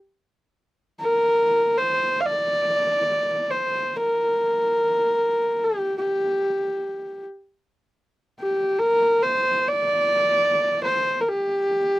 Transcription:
1.00 A#4
1.78 C5
2.20 F5
2.26 D5
3.51 C5
3.96 A#4
5.64 G4
5.98 G4
8.40 G4
8.79 A#4
9.22 C5
9.69 D5
10.84 C5
11.21 A#4
11.29 G4

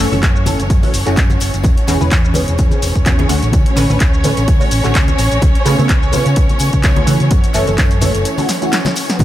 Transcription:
Already playing: C#4 C#5
0.00 C#4 A4
0.12 F#1 E3 A3 C#4 A4, tambourine, high conga, shaker
0.23 F#2, kick, clap, closed hi-hat, tambourine, shaker
0.36 shaker
0.46 F#1 E3 A3 C#4 A4, open hi-hat, tambourine, high conga, low conga, shaker
0.59 F#1, closed hi-hat, tambourine, shaker
0.70 F#2, kick, closed hi-hat, tambourine, shaker
0.83 E3 A3 C#4 F#4, open hi-hat, high conga, shaker
0.93 F#1, open hi-hat, tambourine, shaker
1.06 F#1 E3 A3 C#4 F#4, clap, closed hi-hat, tambourine, shaker
1.17 F#2, kick, clap, closed hi-hat, tambourine, shaker
1.30 closed hi-hat, tambourine, high conga, shaker
1.40 F#1, open hi-hat, tambourine, shaker
1.53 F#1, closed hi-hat, tambourine, shaker
1.63 E2 C#4 C#5, kick, closed hi-hat, tambourine, high conga, shaker
1.78 closed hi-hat
1.87 E1 E3 B3 C#4 G#4, clap, open hi-hat, tambourine, shaker
2.00 E1 E3 B3 C#4 B4, tambourine, high conga, shaker
2.11 kick, clap, closed hi-hat, tambourine, shaker
2.25 shaker
2.34 E1 E3 B3 C#4 G#4, open hi-hat, tambourine, high conga, low conga, shaker
2.48 E1, closed hi-hat, tambourine, shaker
2.58 kick, closed hi-hat, tambourine, shaker
2.71 closed hi-hat, high conga, shaker
2.82 E1, open hi-hat, tambourine, shaker
2.96 E1, kick, closed hi-hat, shaker
3.05 E2 E3 B3 C#4 F#4, kick, clap, closed hi-hat, tambourine, shaker
3.18 E3 B3 C#4 G#4, closed hi-hat, high conga
3.29 D2 D3 A3 C#4 F#4, open hi-hat, tambourine, shaker
3.43 A1, closed hi-hat, tambourine, shaker
3.53 D2, kick, closed hi-hat, tambourine, high conga, shaker
3.66 closed hi-hat
3.76 A1 D3 A3 C#4 B4, clap, open hi-hat, tambourine, shaker
3.89 A1 D3 A3 C#4 B4, tambourine, high conga, shaker
4.00 D2, kick, clap, closed hi-hat, tambourine, shaker
4.14 shaker
4.24 A1 D3 A3 C#4 B4, open hi-hat, tambourine, high conga, low conga, shaker
4.37 A1, closed hi-hat, tambourine, shaker
4.48 kick, closed hi-hat, tambourine, shaker
4.60 D3 A3 C#4 F#4, muted fingered electric bass stroke, open hi-hat, high conga, shaker
4.71 A1, open hi-hat, tambourine, shaker
4.83 A1 D3 A3 C#4 F#4, clap, closed hi-hat, tambourine, shaker
4.95 kick, clap, closed hi-hat, shaker
5.08 closed hi-hat, high conga, shaker
5.19 A1, open hi-hat, tambourine, shaker
5.32 A1, closed hi-hat, tambourine, shaker
5.42 C#2, kick, closed hi-hat, tambourine, high conga, shaker
5.55 closed hi-hat
5.65 C#3 A3 B3 F4, clap, open hi-hat, tambourine, shaker
5.78 C#3 A3 B3 A4, tambourine, high conga, shaker
5.89 C#2, kick, clap, closed hi-hat, tambourine, shaker
6.03 shaker
6.12 C#3 A3 B3 F4, open hi-hat, tambourine, high conga, low conga, shaker
6.26 C#3, closed hi-hat, tambourine, shaker
6.36 C#2, kick, closed hi-hat, tambourine, shaker
6.49 closed hi-hat, high conga, shaker
6.59 C#3, open hi-hat, tambourine, shaker
6.73 C#3, kick, closed hi-hat, shaker
6.83 C#2 C#3 A3 B3 E4, kick, clap, closed hi-hat, tambourine, shaker
6.96 C#3 A3 B3 F4, closed hi-hat, high conga
7.06 C#3 E3 A3 C#4 F#4, open hi-hat, tambourine, shaker
7.20 C#3, closed hi-hat, tambourine, shaker
7.31 F#2, kick, closed hi-hat, tambourine, high conga, shaker
7.44 closed hi-hat, shaker
7.54 F#1 E3 A3 C#4 A4, clap, open hi-hat, tambourine, shaker
7.67 F#1 E3 A3 C#4 A4, closed hi-hat, tambourine, high conga, shaker
7.78 F#2, kick, clap, closed hi-hat, tambourine, shaker
7.91 closed hi-hat, tambourine, shaker
8.01 F#1 E3 A3 C#4 A4, open hi-hat, tambourine, high conga, low conga, shaker
8.15 F#1, closed hi-hat, tambourine, shaker
8.25 closed hi-hat, tambourine, shaker
8.38 E3 A3 C#4 F#4, open hi-hat, tambourine, high conga, shaker
8.49 snare, open hi-hat, tambourine, shaker
8.62 E3 A3 C#4 F#4, closed hi-hat, tambourine, shaker
8.72 snare, clap, closed hi-hat, tambourine, shaker
8.85 snare, closed hi-hat, tambourine, high conga, shaker
8.96 open hi-hat, tambourine, shaker
9.08 snare, closed hi-hat, tambourine, shaker
9.19 E2 B3 B4, kick, closed hi-hat, tambourine, high conga, shaker

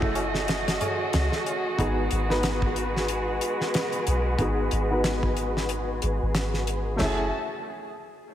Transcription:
Already playing: F#1 A3 C#4 E4 F#4 G#4 A4 D#5, downlifter
0.02 kick
0.15 closed hi-hat, tabla na
0.34 snare, tabla na
0.48 snare, closed hi-hat, tabla na
0.68 snare, closed hi-hat
0.81 closed hi-hat, tabla na, tabla ge
0.99 tabla na
1.13 C#2, snare, closed hi-hat, tabla na
1.32 snare, tabla na
1.46 closed hi-hat, tabla na
1.65 tabla na
1.77 G#1 G#3 B3 D#4 F#4 G#4 B4, kick, closed hi-hat
2.11 G#1, closed hi-hat
2.29 B3 D#4 F#4 B4, snare
2.43 snare, closed hi-hat
2.62 kick
2.76 closed hi-hat
2.97 snare
3.08 closed hi-hat
3.41 closed hi-hat
3.61 snare
3.74 snare, closed hi-hat
3.92 closed hi-hat
4.07 B1, closed hi-hat
4.38 G#1 B3 D#4 F#4 G#4, kick, closed hi-hat
4.71 G#1, closed hi-hat
4.90 B3 D#4 F#4 B4
5.04 snare, closed hi-hat
5.23 kick
5.37 closed hi-hat
5.57 snare
5.69 closed hi-hat
6.02 G#1, closed hi-hat
6.22 G#1
6.35 snare, closed hi-hat
6.54 snare
6.67 closed hi-hat
6.96 A3 C#4 F#4 E5
7.00 F#1 E4 A5, snare, floor tom, crash
7.04 G#4

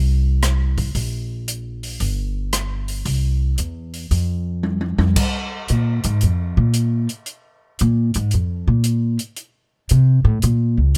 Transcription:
Already playing: C2
0.43 cross-stick, closed hi-hat
0.78 kick, open hi-hat
0.95 A#1, kick, open hi-hat
1.48 closed hi-hat
1.83 open hi-hat
2.00 G1, kick, open hi-hat
2.53 cross-stick, closed hi-hat
2.88 open hi-hat
3.05 C2, kick, open hi-hat
3.58 E2, closed hi-hat
3.94 open hi-hat
4.11 F2, kick, open hi-hat
4.63 high tom
4.81 high tom
4.98 F2, high tom
5.16 kick, crash
5.68 A#2, closed hi-hat
6.04 G#2, closed hi-hat
6.21 F2, closed hi-hat
6.57 A#2
6.74 closed hi-hat
7.09 closed hi-hat
7.26 closed hi-hat
7.79 A#2, closed hi-hat
8.14 G#2, closed hi-hat
8.31 F2, closed hi-hat
8.68 A#2
8.84 closed hi-hat
9.19 closed hi-hat
9.36 closed hi-hat
9.89 C3, closed hi-hat
10.25 A2
10.42 A#2, closed hi-hat
10.77 C#2

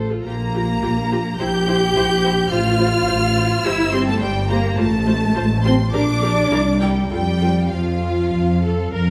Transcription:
Already playing: A1 A4 C5
0.11 F4 A4
0.24 A#1 A#3 F4 G4 A#5
0.54 F4 G4
0.82 A#1 F4 G4
1.11 F4 G4
1.40 A#1 E4 G4 C5 G6
1.68 E4 C5
1.96 A#1 E4 C5
2.23 E4 C5
2.51 A1 F4 C5 F6
2.80 F4 C5
3.08 A1 F4 C5
3.36 F4 C5
3.64 G1 E4 G4 C5 E6
3.93 C4 G4 C5 C6
4.07 A3 A5
4.21 G1 G3 G4 C5 G5
4.48 A#3 G4 C5 A#5
4.76 A1 A3 F4 C5 A5
5.06 F4 C5
5.35 A1 F4 C5
5.63 C4 F4 C5 C6
5.93 A#1 D4 G4 A#4 D6
6.22 G4 A#4
6.51 C2 E4 A#4
6.81 G3 E4 A#4 G5
7.10 F2 G3 F4 A4 G5
7.41 F4 A4
7.71 F2 F3 F4 F5
8.33 F2
8.63 A4
8.93 F2 A#4

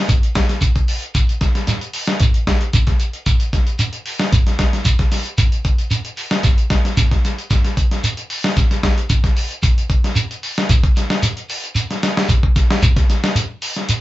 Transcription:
0.09 kick, closed hi-hat, shekere
0.23 closed hi-hat
0.35 kick, snare, closed hi-hat, shekere
0.49 snare, closed hi-hat
0.61 kick, closed hi-hat, shekere
0.75 kick, closed hi-hat
0.88 open hi-hat, shekere
1.02 closed hi-hat
1.15 kick, closed hi-hat, shekere
1.29 closed hi-hat
1.41 kick, snare, closed hi-hat, shekere
1.55 snare, closed hi-hat
1.67 snare, closed hi-hat, shekere
1.81 closed hi-hat
1.93 open hi-hat, shekere
2.08 snare
2.20 kick, closed hi-hat, shekere
2.34 closed hi-hat
2.47 kick, snare, closed hi-hat, shekere
2.61 closed hi-hat
2.73 kick, closed hi-hat, shekere
2.87 kick, snare, closed hi-hat
3.00 closed hi-hat, shekere
3.13 closed hi-hat
3.26 kick, closed hi-hat, shekere
3.40 closed hi-hat
3.53 kick, snare, closed hi-hat, shekere
3.67 closed hi-hat
3.79 closed hi-hat, shekere
3.93 closed hi-hat
4.06 open hi-hat, shekere
4.20 snare
4.33 kick, closed hi-hat, shekere
4.47 snare, closed hi-hat
4.59 kick, snare, closed hi-hat, shekere
4.73 snare, closed hi-hat
4.85 kick, closed hi-hat, shekere
4.99 kick, snare, closed hi-hat
5.12 snare, open hi-hat, shekere
5.26 closed hi-hat
5.38 kick, closed hi-hat, shekere
5.52 closed hi-hat
5.65 kick, closed hi-hat, shekere
5.78 closed hi-hat
5.91 closed hi-hat, shekere
6.05 closed hi-hat
6.17 open hi-hat, shekere
6.31 snare, closed hi-hat
6.43 kick, snare, closed hi-hat, shekere
6.58 closed hi-hat
6.70 kick, snare, closed hi-hat, shekere
6.85 snare, closed hi-hat
6.97 kick, snare, closed hi-hat, shekere
7.11 kick, snare, closed hi-hat
7.25 snare, closed hi-hat, shekere
7.38 closed hi-hat
7.51 kick, snare, closed hi-hat, shekere
7.64 snare, closed hi-hat
7.77 kick, closed hi-hat, shekere
7.91 snare, closed hi-hat
8.04 closed hi-hat, shekere
8.17 closed hi-hat
8.30 open hi-hat, shekere
8.44 snare
8.57 kick, snare, closed hi-hat, shekere
8.71 snare, closed hi-hat
8.83 kick, snare, closed hi-hat, shekere
8.98 closed hi-hat
9.10 kick, closed hi-hat, shekere
9.24 kick, snare, closed hi-hat
9.36 open hi-hat, shekere
9.51 closed hi-hat
9.63 kick, closed hi-hat, shekere
9.78 closed hi-hat
9.90 kick, closed hi-hat, shekere
10.04 snare, closed hi-hat
10.16 closed hi-hat, shekere
10.31 closed hi-hat
10.43 open hi-hat, shekere
10.58 snare, closed hi-hat
10.69 kick, closed hi-hat, shekere
10.83 kick, closed hi-hat
10.96 snare, closed hi-hat, shekere
11.10 snare
11.23 closed hi-hat, shekere
11.37 closed hi-hat
11.49 open hi-hat, shekere
11.64 closed hi-hat
11.75 closed hi-hat, shekere
11.91 snare, closed hi-hat
12.03 snare, closed hi-hat, shekere
12.17 snare
12.29 kick, closed hi-hat, shekere
12.43 kick
12.56 kick, snare, closed hi-hat, shekere
12.71 snare
12.83 kick, closed hi-hat, shekere
12.97 kick, snare, closed hi-hat
13.10 snare, closed hi-hat, shekere
13.24 snare, closed hi-hat
13.35 closed hi-hat, shekere
13.62 open hi-hat, shekere
13.76 snare, closed hi-hat
13.89 closed hi-hat, shekere

